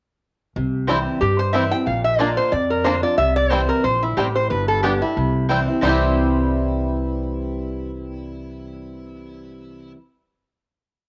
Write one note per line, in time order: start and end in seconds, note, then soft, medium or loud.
0.56 1.05 C2 medium
0.56 1.19 C3 medium
0.87 1.19 E3 medium
0.87 1.20 G3 medium
0.87 0.97 G3 medium
0.87 0.98 C4 medium
0.87 1.20 C4 medium
0.87 0.97 C4 medium
0.87 0.98 E4 medium
0.87 1.20 E4 medium
0.87 0.97 E4 medium
0.87 0.98 C5 medium
0.87 0.98 G5 medium
1.21 1.84 G2 medium
1.21 1.71 G2 medium
1.21 1.39 G4 medium
1.39 1.53 C5 medium
1.53 1.71 E3 medium
1.53 1.71 G3 medium
1.53 1.62 G3 medium
1.53 1.64 C4 medium
1.53 1.72 C4 medium
1.53 1.63 C4 medium
1.53 1.64 E4 medium
1.53 1.63 E4 medium
1.53 1.71 E4 loud
1.53 1.64 C5 medium
1.53 1.71 E5 medium
1.53 1.64 G5 medium
1.72 1.87 C4 medium
1.72 1.86 E4 medium
1.72 1.86 G5 loud
1.86 2.36 A#1 medium
1.86 2.49 A#2 medium
1.86 2.04 F5 medium
2.04 2.19 E5 loud
2.19 2.51 D3 medium
2.19 2.29 A#3 medium
2.19 2.51 A#3 medium
2.19 2.28 A#3 medium
2.19 2.28 D4 medium
2.19 2.52 D4 medium
2.19 2.29 F4 medium
2.19 2.52 F4 medium
2.19 2.37 D5 medium
2.19 2.30 D5 medium
2.19 2.30 A#5 medium
2.37 2.52 C5 loud
2.52 3.15 F2 medium
2.52 3.02 F2 medium
2.52 2.70 D5 medium
2.71 2.85 A#4 medium
2.84 3.02 D3 medium
2.84 2.95 A#3 medium
2.84 3.03 A#3 medium
2.84 2.94 A#3 medium
2.84 3.03 D4 medium
2.84 2.94 D4 medium
2.84 2.95 F4 medium
2.84 3.02 F4 medium
2.84 3.03 C5 medium
2.84 2.95 D5 medium
2.84 2.95 A#5 medium
3.03 3.18 D4 medium
3.03 3.17 F4 medium
3.03 3.17 D5 medium
3.18 3.68 C2 medium
3.18 3.82 C3 medium
3.18 3.36 E5 loud
3.36 3.51 D5 loud
3.50 3.83 E3 medium
3.50 3.83 G3 medium
3.50 3.60 G3 medium
3.50 3.61 C4 medium
3.50 3.60 C4 medium
3.50 3.83 C4 loud
3.50 3.61 E4 medium
3.50 3.84 E4 medium
3.50 3.60 E4 medium
3.50 3.61 C5 medium
3.50 3.69 C5 medium
3.50 3.61 G5 loud
3.69 3.83 A#4 medium
3.84 4.12 A#1 medium
3.84 4.16 A#2 medium
3.84 4.02 C5 medium
4.03 4.17 E4 medium
4.17 4.45 A1 medium
4.17 4.49 A2 medium
4.17 4.26 G3 medium
4.17 4.27 C4 medium
4.17 4.26 C4 medium
4.17 4.27 E4 medium
4.17 4.26 E4 medium
4.17 4.35 G4 medium
4.17 4.27 C5 medium
4.17 4.27 G5 medium
4.36 4.50 C5 loud
4.50 5.00 G1 medium
4.50 5.13 G2 medium
4.50 4.68 B4 medium
4.68 4.82 A4 medium
4.83 5.01 G3 medium
4.83 4.92 G3 medium
4.83 4.93 B3 medium
4.83 5.01 B3 medium
4.83 4.92 B3 medium
4.83 4.92 D4 medium
4.83 5.02 D4 medium
4.83 4.93 G4 medium
4.83 5.01 G4 medium
4.83 5.00 G4 medium
4.83 4.93 D5 medium
4.83 4.93 G5 loud
5.01 5.17 D4 soft
5.01 5.46 E4 medium
5.01 5.15 G4 medium
5.16 5.66 C2 medium
5.16 5.80 C3 medium
5.49 5.67 E3 medium
5.49 5.67 G3 medium
5.49 5.58 G3 medium
5.49 5.59 C4 medium
5.49 5.67 C4 medium
5.49 5.58 C4 medium
5.49 5.59 E4 medium
5.49 5.66 E4 medium
5.49 5.58 E4 medium
5.49 5.59 C5 medium
5.49 5.59 G5 medium
5.68 5.83 C4 soft
5.68 5.82 E4 medium
5.81 9.92 C2 medium
5.81 9.96 C3 medium
5.81 9.96 E3 medium
5.81 9.92 G3 medium
5.81 9.97 G3 medium
5.81 9.94 C4 medium
5.81 9.93 C4 medium
5.81 9.95 E4 medium
5.81 9.91 E4 medium
5.81 9.96 C5 loud
5.81 9.96 G5 medium
5.85 9.97 C4 medium
5.85 9.98 E4 medium
5.85 9.94 E4 medium
5.85 9.95 G4 medium